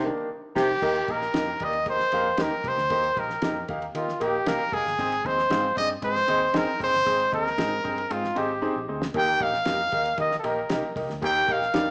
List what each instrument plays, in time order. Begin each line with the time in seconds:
0.04 grand piano D#3 A#3 D4
0.55 fingered electric bass C2, baritone saxophone C3, clean electric guitar D#4 G4 A#4, trumpet G4, kick, snare, crash
0.82 fingered electric bass D#2, grand piano D#3 A#3 D#4 G4 A#4 D#5, kick, crash
0.96 ride
1.08 fingered electric bass A#1, grand piano A#3 D#4 G4 A#4 D#5, trumpet A#4, kick, ride
1.22 snare
1.34 fingered electric bass F2, grand piano A#3 D#4 G4 A#4 D#5, clean electric guitar D#4 G4 A#4, snare, ride
1.60 fingered electric bass D#2, grand piano A#3 D#4 G4 A#4 D5, kick, ride
1.64 trumpet D#5
1.73 ride
1.86 grand piano A#3 D#4 G4 A#4 D#5, trumpet C5, kick, ride
1.99 snare
2.12 fingered electric bass F2, grand piano A#3 D#4 G4 A#4 F5, ride
2.37 fingered electric bass D#2, grand piano A#3 D#4 G4 A#4 D#5, clean electric guitar D#4 G4 A#4, snare, ride
2.42 trumpet A#4
2.64 fingered electric bass C2, grand piano A#3 D#4 G4 A#4 D#5, kick, ride
2.68 trumpet C5
2.77 fingered electric bass D2, snare
2.90 fingered electric bass D#2, grand piano D#3 A#3 D#4 G4 A#4 C5, kick, ride
3.04 ride
3.17 fingered electric bass A#1, grand piano A#3 D#4 G4 A#4 D#5, trumpet A#4, kick, ride
3.30 snare
3.42 fingered electric bass F2, grand piano A#3 D#4 G4 A#4 D#5, clean electric guitar D#4 G4 A#4, snare, ride
3.68 fingered electric bass D#2, grand piano A#3 D#4 G4 A#4 F5, kick, ride
3.82 ride
3.95 fingered electric bass D#3, grand piano A#3 D#4 G4 A#4 D#5, trumpet F4, ride
4.08 snare
4.20 fingered electric bass A#1, grand piano A#3 D#4 G4 A#4 D#5, trumpet G4, ride
4.46 fingered electric bass C2, grand piano A#3 D#4 G4 A#4 F5, clean electric guitar D#4 G4 A#4, trumpet A#4, snare, ride
4.72 fingered electric bass F1, grand piano A#3 D#4 G4 A#4 F5, trumpet G#4, kick, ride
4.85 fingered electric bass G1, snare
4.99 fingered electric bass G#1, grand piano G#2 C4 D#4 G#4 C5 D#5, kick, ride
5.12 ride
5.25 fingered electric bass D#2, grand piano C4 D#4 G#4 C5 D#5, trumpet C5, kick, ride
5.38 snare
5.50 fingered electric bass G#2, grand piano C4 D#4 G#4 C5 F5, clean electric guitar D#4 G#4 C5, snare, ride
5.76 fingered electric bass G2, grand piano C4 D#4 G#4 C5 D5, trumpet D#5, kick, ride
5.90 ride
6.02 fingered electric bass G#2, grand piano C4 D#4 G#4 C5 D#5, trumpet C5, kick, ride
6.16 snare
6.28 fingered electric bass D#2, grand piano C4 D#4 G#4 C5 D#5, ride
6.53 fingered electric bass F2, grand piano C4 D#4 G#4 C5 D#5, clean electric guitar D#4 G#4 C5, trumpet A#4, snare, ride
6.79 fingered electric bass F1, grand piano C4 D#4 G#4 C5 D#5, kick, open hi-hat, ride
6.83 trumpet C5
6.94 fingered electric bass G1, snare
7.06 fingered electric bass G#1, grand piano G#2 C4 D#4 G#4 C5 D#5, kick, hi-hat pedal, ride
7.20 ride
7.32 fingered electric bass D#2, grand piano C4 D#4 G#4 C5 D#5, trumpet A#4, kick, ride
7.46 snare
7.57 fingered electric bass G#2, grand piano C4 D#4 G#4 C5 D#5, clean electric guitar D#4 G#4 C5, snare, ride
7.84 fingered electric bass G2, grand piano C4 D#4 G#4 C5 D#5, kick, ride
7.98 ride
8.10 fingered electric bass G#2, grand piano C4 D#4 G#4 C5 D#5, trumpet F4, ride
8.24 snare
8.35 fingered electric bass G#1, grand piano C4 D#4 G#4 C5 D#5, trumpet G4, ride
8.62 grand piano C4 D#4 G#4 C5 D#5, clean electric guitar D#4 G#4 C5
8.76 fingered electric bass A#1
8.88 fingered electric bass D2, grand piano C4 D#4 G#4 C5 D#5
9.02 snare
9.14 fingered electric bass D#2, baritone saxophone D#2, grand piano D#3 A#3 D#4 G4 A#4 D#5, trumpet G5, kick, ride
9.28 ride
9.40 fingered electric bass A#1, grand piano A#3 D#4 G4 A#4 D#5, trumpet F5, kick, ride
9.53 snare
9.65 fingered electric bass F2, grand piano A#3 D#4 G4 A#4 D#5, clean electric guitar D#4 G4 A#4, snare, ride
9.92 fingered electric bass D#2, grand piano A#3 D#4 G4 A#4 D#5, kick, ride
10.06 ride
10.17 fingered electric bass D#3, grand piano A#3 D#4 G4 A#4 D#5, trumpet D#5, kick, ride
10.31 snare
10.39 trumpet A4
10.44 fingered electric bass A#1, grand piano A#3 D#4 G4 A#4 D#5, trumpet A#4, ride
10.69 fingered electric bass C2, grand piano A#3 D#4 G4 A#4 D#5, clean electric guitar D#4 G4 A#4, snare, ride
10.95 fingered electric bass C2, grand piano A#3 D#4 G4 A#4 D#5, kick, open hi-hat, ride
11.09 fingered electric bass D2, snare
11.22 baritone saxophone D#2, fingered electric bass D#2, grand piano D#3 A#3 D#4 G4 A#4 D#5, trumpet G5, kick, hi-hat pedal, ride
11.36 ride
11.47 fingered electric bass A#1, grand piano A#3 D#4 G4 A#4 D#5, kick, ride
11.52 trumpet F5
11.62 snare
11.74 fingered electric bass F2, grand piano A#3 D#4 G4 A#4 D5, clean electric guitar D#4 G4 A#4, snare, ride